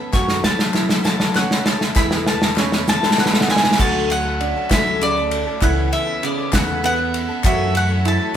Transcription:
Already playing: C#3 B3 C#4 A4 B4 E5 B5
0.00 B3
0.12 F#2 C#3 E3 F#3 A3 C#4 F#4 A4 C#6, kick, snare, clap, shaker
0.29 snare
0.43 E3 F#3 A3 C#4 A4 A5, snare
0.57 E3 A3 C#4 A4, snare
0.74 E4, snare, clap
0.88 E3 A3 C#4 A4, snare
1.03 F#2 C#3 E3 A3 C#4 A4 A5, snare, clap, shaker
1.20 snare
1.34 E3 A3 C#4 A4 F#5, snare, clap
1.49 E3 A3 C#4 A4, snare
1.66 A5, snare
1.79 E3 A3 C#4 A4, snare
1.95 E2 E3 B3 E4 A4 B4 B5, kick, snare, clap, shaker
2.11 snare
2.25 E3 B3 E4 A4 A5, snare
2.41 B3 E4 A4, snare
2.56 C#4, snare, clap
2.71 B3 E4 A4, snare, shaker
2.87 E3 B3 E4 A4 A5, snare, clap, shaker
3.03 snare, shaker
3.11 snare
3.18 E3 B3 E4 A4 F#5, snare, clap, shaker
3.26 snare
3.33 B3 E4 A4, snare
3.41 snare
3.49 G#5, snare
3.56 snare
3.64 B3 E4 A4, snare, shaker
3.72 snare
3.79 D2 D3 F#3 A3 C#4 F#4 A4 E5 A5, kick, clap, crash, shaker
4.10 F#3 A3 C#4 A4 F#5, ride
4.25 A3 C#4 A4
4.40 D4, ride
4.56 A3 C#4 A4
4.70 D2 D3 F#3 A3 C#4 A4 E5, kick, snare, clap, ride, shaker
4.86 shaker
5.01 C#3 F#3 A3 C#4 A4 D5, ride
5.16 A3 A4, shaker
5.31 ride
5.47 A3 C#4 A4
5.61 C#2 C#3 E3 B3 C#4 E4 A4 B4 E5 F#5, kick, clap, ride, shaker
5.91 E3 B3 C#4 A4 E5, ride
6.06 B3 C#4 A4
6.23 C#3 D5, ride
6.37 B3 C#4 A4
6.52 E2 C#3 E3 B3 C#4 A4 F#5, kick, snare, clap, ride, shaker
6.68 shaker
6.82 E3 B3 C#4 A4 F#5, ride
6.97 B3 C#4 A4
7.14 ride
7.29 B3 C#4 A4
7.44 F#2 C#3 E3 F#3 A3 C#4 F#4 A4 E5, kick, clap, ride, shaker
7.74 E3 A3 C#4 A4 F#5, ride
7.88 E3 A3 C#4 A4
8.05 E4 A5, ride
8.19 E3 A3 C#4 A4

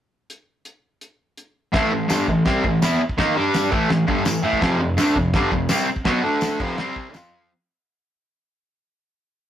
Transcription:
0.30 closed hi-hat
0.65 closed hi-hat
1.01 closed hi-hat
1.37 closed hi-hat
1.72 A2 E3 A3, kick, snare, crash
1.91 A2 E3
2.08 G2 D3 G3, snare, tambourine, crash
2.28 A2 E3, kick
2.45 C3 G3 C4, kick, snare, crash
2.64 A2 E3, kick
2.82 E3 B3 E4, snare, tambourine, crash
3.01 muted distorted electric guitar stroke
3.09 kick
3.18 D#3 A#3 D#4, kick, snare, crash
3.36 G3 D4 G4
3.54 snare, tambourine, crash
3.70 A2 E3 A3, kick
3.89 A2 E3, snare, crash
4.07 G2 D3 G3, kick
4.25 A2 E3, snare, tambourine, crash
4.42 A2 E3 A3
4.53 kick
4.61 F2 C3 F3, kick, snare, crash
4.79 F2 C3
4.97 D3 A3 D4, snare, tambourine, crash
5.16 F2 C3, kick
5.33 G2 D3 G3, kick, snare, crash
5.52 F2 C3, kick
5.69 C3 G3 C4, snare, tambourine, crash
5.88 muted distorted electric guitar stroke
5.96 kick
6.05 B2 F#3 B3, kick, snare, crash
6.23 D3 A3 D4
6.41 snare, tambourine, crash
6.59 F2 C3 F3, kick, crash
6.78 C3 G3 C4, snare, crash
6.96 kick
7.14 F3 C4 F4, snare, tambourine, crash

